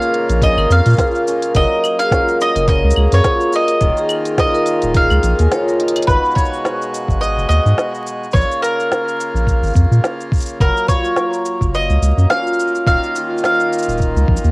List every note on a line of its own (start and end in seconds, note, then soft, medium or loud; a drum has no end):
0.00 1.60 A#2 medium
0.00 1.53 C#3 medium
0.00 3.60 D#3 medium
0.00 3.78 A#3 medium
0.00 0.42 C#4 medium
0.00 2.33 D#4 medium
0.00 0.99 F4 medium
0.00 1.53 F4 medium
0.00 0.98 G#4 medium
0.00 0.58 A#4 loud
0.00 1.56 A#4 medium
0.00 0.44 F5 loud
0.00 cabasa soft
0.14 closed hi-hat soft
0.29 0.57 A#1 medium
0.29 closed hi-hat soft
0.29 cabasa soft
0.42 1.27 C#4 medium
0.42 0.72 D#5 medium
0.42 kick loud
0.42 closed hi-hat medium
0.42 cabasa soft
0.57 0.66 G#1 medium
0.57 0.70 A#4 loud
0.57 claves medium
0.70 0.81 F2 loud
0.70 1.24 F5 medium
0.70 cabasa medium
0.86 0.95 A#2 medium
0.86 closed hi-hat soft
0.86 cabasa soft
0.90 cabasa soft
0.93 cabasa soft
0.96 1.08 G#4 medium
0.96 kick loud
0.96 snare medium
0.96 closed hi-hat medium
0.96 cabasa soft
0.99 2.12 F4 medium
0.99 cabasa soft
1.03 cabasa soft
1.07 cabasa soft
1.11 cabasa soft
1.15 cabasa soft
1.27 2.12 C#4 medium
1.27 cabasa medium
1.42 closed hi-hat soft
1.42 cabasa soft
1.55 1.66 F#1 loud
1.55 3.87 F#3 medium
1.55 1.70 A#4 loud
1.55 2.13 A#4 medium
1.55 1.97 D#5 loud
1.55 kick loud
1.55 closed hi-hat medium
1.55 cabasa soft
1.84 cabasa medium
1.84 claves medium
1.99 2.06 G#4 medium
1.99 2.37 F5 loud
1.99 closed hi-hat soft
1.99 cabasa soft
2.11 2.68 C#4 medium
2.11 3.25 F4 medium
2.11 3.82 A#4 medium
2.11 kick loud
2.11 snare loud
2.11 closed hi-hat medium
2.11 cabasa soft
2.28 cabasa soft
2.41 2.67 D#5 loud
2.41 cabasa medium
2.56 2.83 F#1 medium
2.56 2.68 A#4 loud
2.56 closed hi-hat soft
2.56 cabasa soft
2.68 3.52 C#4 medium
2.68 3.13 D#5 loud
2.68 kick loud
2.68 closed hi-hat medium
2.68 cabasa soft
2.84 2.93 C#2 medium
2.91 cabasa medium
2.96 3.08 C#2 loud
2.96 3.06 G#4 medium
2.96 claves medium
3.12 3.21 F#2 medium
3.12 3.55 C#5 loud
3.12 closed hi-hat soft
3.12 cabasa soft
3.24 4.39 F4 medium
3.24 kick loud
3.24 snare medium
3.24 closed hi-hat medium
3.24 cabasa soft
3.41 cabasa soft
3.53 7.39 C#4 medium
3.53 3.69 A#4 loud
3.53 4.35 D#5 loud
3.53 cabasa medium
3.68 closed hi-hat soft
3.68 cabasa soft
3.81 3.92 D#1 loud
3.81 12.65 D#3 medium
3.81 6.06 D#3 medium
3.81 6.06 A#3 medium
3.81 6.06 F4 medium
3.81 4.39 A#4 medium
3.81 kick loud
3.81 closed hi-hat medium
3.81 cabasa soft
3.97 4.05 G#4 medium
3.97 cabasa soft
4.09 closed hi-hat soft
4.09 cabasa medium
4.09 claves medium
4.25 closed hi-hat soft
4.25 cabasa soft
4.38 4.95 D#4 medium
4.38 5.51 F4 medium
4.38 7.22 A#4 medium
4.38 4.97 D#5 medium
4.38 kick loud
4.38 snare loud
4.38 closed hi-hat medium
4.38 cabasa soft
4.54 4.66 A#4 loud
4.54 cabasa soft
4.66 closed hi-hat soft
4.66 cabasa medium
4.82 5.10 D#1 medium
4.82 closed hi-hat soft
4.82 cabasa soft
4.94 5.80 D#4 medium
4.94 5.04 G#4 medium
4.94 5.77 F5 medium
4.94 kick loud
4.94 closed hi-hat medium
4.94 cabasa soft
5.10 5.19 C#2 medium
5.10 cabasa soft
5.10 claves medium
5.23 5.34 A#1 loud
5.23 closed hi-hat soft
5.23 cabasa medium
5.39 5.48 D#2 medium
5.39 5.51 G#5 medium
5.39 closed hi-hat soft
5.39 cabasa soft
5.51 8.88 F4 medium
5.51 5.67 C#5 loud
5.51 snare loud
5.51 closed hi-hat medium
5.51 cabasa soft
5.68 5.79 A#4 medium
5.68 cabasa soft
5.80 11.93 D#4 medium
5.80 closed hi-hat medium
5.88 closed hi-hat medium
5.96 6.03 D#5 medium
5.96 closed hi-hat medium
5.96 claves medium
6.02 closed hi-hat medium
6.07 6.19 G#1 medium
6.07 8.33 B2 medium
6.07 8.33 G#3 medium
6.07 8.33 F#4 medium
6.07 6.34 B4 medium
6.07 kick loud
6.07 cabasa soft
6.25 cabasa soft
6.31 6.88 C#5 loud
6.31 cabasa soft
6.36 kick medium
6.36 cabasa medium
6.45 cabasa soft
6.54 cabasa soft
6.65 snare loud
6.65 cabasa soft
6.82 cabasa soft
6.94 cabasa medium
7.08 7.37 G#1 medium
7.08 kick medium
7.08 cabasa soft
7.21 7.48 D#5 loud
7.21 cabasa soft
7.37 7.46 F#1 medium
7.37 cabasa soft
7.49 7.60 D#2 loud
7.49 8.02 D#5 medium
7.49 cabasa medium
7.66 7.74 G#2 medium
7.66 cabasa soft
7.78 snare loud
7.78 cabasa soft
7.95 cabasa soft
8.07 cabasa medium
8.23 cabasa soft
8.31 8.45 A#1 medium
8.31 10.59 C#3 medium
8.31 14.51 A#3 medium
8.31 10.59 F4 medium
8.31 8.62 C#5 loud
8.31 kick loud
8.31 cabasa soft
8.36 cabasa soft
8.41 cabasa soft
8.51 cabasa soft
8.62 9.72 A#4 medium
8.62 cabasa medium
8.80 cabasa soft
8.92 snare loud
8.92 cabasa soft
9.08 cabasa soft
9.21 cabasa medium
9.34 9.62 A#1 medium
9.34 cabasa soft
9.47 kick medium
9.47 cabasa soft
9.63 9.72 G#1 medium
9.63 cabasa soft
9.67 cabasa soft
9.70 cabasa soft
9.73 9.86 F2 loud
9.73 kick medium
9.73 cabasa soft
9.76 cabasa medium
9.91 10.00 A#2 medium
9.91 cabasa soft
10.04 snare loud
10.04 cabasa soft
10.21 cabasa soft
10.32 kick loud
10.32 cabasa soft
10.36 cabasa soft
10.38 cabasa soft
10.40 cabasa soft
10.42 cabasa medium
10.46 cabasa medium
10.48 cabasa soft
10.60 10.71 F#1 medium
10.60 12.92 F#3 medium
10.60 10.88 A#4 medium
10.60 kick loud
10.60 cabasa soft
10.77 cabasa soft
10.88 12.31 F4 medium
10.88 11.74 C#5 medium
10.88 kick loud
10.88 cabasa medium
11.04 cabasa soft
11.16 12.32 A#4 medium
11.16 snare loud
11.16 cabasa soft
11.33 cabasa soft
11.45 cabasa medium
11.61 11.89 F#1 medium
11.61 kick medium
11.61 cabasa soft
11.74 12.33 D#5 medium
11.74 cabasa soft
11.90 11.98 C#2 medium
11.90 cabasa soft
12.02 12.13 C#2 loud
12.02 cabasa medium
12.18 12.26 F#2 medium
12.18 cabasa soft
12.30 14.51 C#4 medium
12.30 13.15 F4 medium
12.30 13.44 A#4 medium
12.30 12.86 F5 loud
12.30 snare medium
12.30 cabasa soft
12.47 cabasa soft
12.53 cabasa soft
12.60 cabasa medium
12.68 cabasa soft
12.75 cabasa soft
12.86 12.98 D#1 medium
12.86 14.51 D#3 medium
12.86 14.51 F4 medium
12.86 13.44 F5 loud
12.86 kick loud
12.86 cabasa soft
13.04 cabasa soft
13.16 14.51 F4 medium
13.16 cabasa medium
13.38 cabasa soft
13.44 14.51 A#4 medium
13.44 14.51 F5 medium
13.44 snare loud
13.44 cabasa soft
13.60 cabasa soft
13.73 cabasa medium
13.79 cabasa medium
13.83 cabasa soft
13.88 14.16 D#1 medium
13.88 cabasa soft
13.92 cabasa soft
13.98 kick medium
13.98 cabasa soft
14.02 cabasa soft
14.16 14.25 C#2 medium
14.16 cabasa soft
14.28 14.39 A#1 medium
14.28 kick medium
14.37 cabasa medium
14.44 14.51 D#2 medium
14.44 cabasa soft